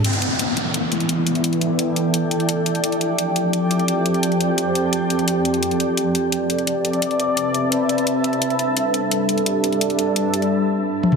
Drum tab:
HH |xxx-x-x-x-xxx-xx|xxx-x-x-x-xxx-xx|xxx-x-x-x-xxx-xx|xxx-x-x-x-xxx-xx|
T1 |----------------|----------------|----------------|----------------|
T2 |----------------|----------------|----------------|----------------|

HH |xxx-x-x-x-xxx-xx|xxx-x-x-x-xxx-xx|xxx-x-x-x-xxx-xx|xxx-x-xx--------|
T1 |----------------|----------------|----------------|--------------o-|
T2 |----------------|----------------|----------------|---------------o|